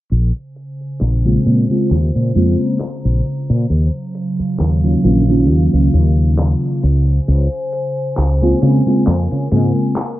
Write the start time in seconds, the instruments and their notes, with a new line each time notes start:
0.11 fretless electric bass A#1, ambient pad C#3 C5 G#5, closed hi-hat
0.36 closed hi-hat
0.56 closed hi-hat
0.81 closed hi-hat
1.01 fretless electric bass A#1, clap
1.25 fm electric piano C#3 G#3 A#3 C4 F4, closed hi-hat
1.45 fretless electric bass A#2, fm electric piano C#3 G#3 A#3 C4 F4, closed hi-hat
1.69 fm electric piano C#3 G#3 A#3 C4 F4, closed hi-hat
1.90 fretless electric bass D#2, ambient pad A#5, clap
2.15 fretless electric bass A#2, closed hi-hat
2.34 fretless electric bass F2, fm electric piano C#3 G#3 A#3 C4 F4, closed hi-hat
2.60 closed hi-hat
2.80 clap, closed hi-hat
3.05 fretless electric bass A#1, closed hi-hat
3.25 closed hi-hat
3.50 fretless electric bass A#2, closed hi-hat
3.70 fretless electric bass D#2, ambient pad C#3 F#3 F5, closed hi-hat
3.95 closed hi-hat
4.15 closed hi-hat
4.39 muted fretless electric bass stroke, closed hi-hat
4.59 fretless electric bass D#2, clap, closed hi-hat
4.83 fm electric piano D#3 F#3 A#3 C#4 F4, closed hi-hat
5.03 fretless electric bass A#1, fm electric piano D#3 F#3 A#3 C#4 F4, closed hi-hat
5.27 fm electric piano D#3 F#3 A#3 C#4 F4, closed hi-hat
5.49 fretless electric bass D#2, closed hi-hat
5.73 fretless electric bass C#2, closed hi-hat
5.94 fretless electric bass D#2, closed hi-hat
6.18 closed hi-hat
6.39 clap, closed hi-hat
6.63 closed hi-hat
6.83 fretless electric bass C#2, ambient pad C5 G#5, closed hi-hat
7.08 closed hi-hat
7.28 fretless electric bass C#2, closed hi-hat
7.53 closed hi-hat
7.73 closed hi-hat
7.97 closed hi-hat
8.17 fretless electric bass C#2, clap
8.41 fm electric piano C#3 G#3 A#3 C4 F4, closed hi-hat
8.61 fm electric piano C#3 G#3 A#3 C4 F4, fretless electric bass C#3, ambient pad A#4, closed hi-hat
8.86 fm electric piano C#3 G#3 A#3 C4 F4, closed hi-hat
9.07 fretless electric bass F2, clap, closed hi-hat
9.31 fretless electric bass C#3, closed hi-hat
9.51 fretless electric bass G#2, fm electric piano C#3 G#3 A#3 C4 F4, closed hi-hat
9.76 closed hi-hat
9.96 clap, closed hi-hat